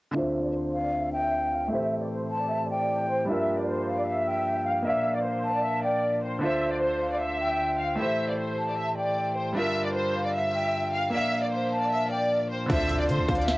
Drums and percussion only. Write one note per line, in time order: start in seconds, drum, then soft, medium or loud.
12.70 kick loud
12.70 closed hi-hat medium
12.70 crash loud
12.89 closed hi-hat medium
13.09 closed hi-hat medium
13.29 kick medium
13.29 closed hi-hat medium
13.35 closed hi-hat medium
13.42 closed hi-hat medium
13.48 snare loud
13.48 closed hi-hat medium